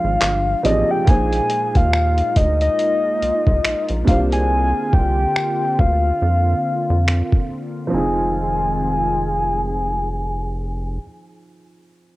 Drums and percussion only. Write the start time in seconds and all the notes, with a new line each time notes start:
0.22 clap, closed hi-hat
0.65 closed hi-hat
1.07 kick, closed hi-hat
1.33 closed hi-hat
1.50 closed hi-hat
1.75 kick, closed hi-hat
1.93 finger snap
2.18 closed hi-hat
2.36 kick, closed hi-hat
2.61 closed hi-hat
2.79 closed hi-hat
3.22 closed hi-hat
3.47 kick
3.65 finger snap, closed hi-hat
3.89 closed hi-hat
4.07 kick, closed hi-hat
4.32 closed hi-hat
4.93 kick
5.36 finger snap
5.79 kick
7.08 finger snap
7.32 kick